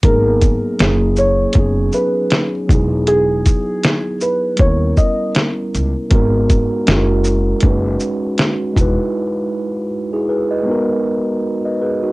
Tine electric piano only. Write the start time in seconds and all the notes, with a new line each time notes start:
0.03 F#3 A#3 B3 D#4 G#4
0.78 F#3 A#3 C#4 E4 G#4
1.55 F#3 B3 C#4 D#4
1.59 G#4
2.67 F#3 B3 D#4
2.73 E4 G#4
4.56 G3 B3
4.60 C#4 E4
4.65 A#4
6.10 G#3 B3 D#4 F#4
6.14 A#4
6.86 G#3 C#4 E4 F#4 A4
6.97 A#4
7.62 G#3 C#4 D#4 F#4 B4
8.73 G#3 D#4
8.77 E4 F#4 B4
10.13 E4 G#4
10.29 G#4 B4
10.51 B4 D#5
10.63 G#3 B3
10.67 D#4 F#4 A#4
11.65 B4 D#5
11.81 G#4 B4
12.03 D#4 F#4